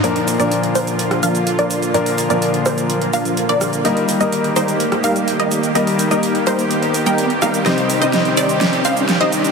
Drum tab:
HH |xxoxxxoxxxoxxxox|xooxxxoxxxoxxxox|xxoxxxoxxxoxxxox|xooxxxoxxxoxxxox|
SH |x-xxx-xxx-xxx-xx|x-xxx-xxx-xxx-xx|x-xxx-xxx-xxx-xx|x-xxx-xxx-xxx-xx|
SD |---------r------|------r-------r-|---------r------|------r-------r-|

HH |xxoxxxoxxxoxxxox|
SH |x-xxx-xxx-xxx-xx|
SD |o---o---o---o---|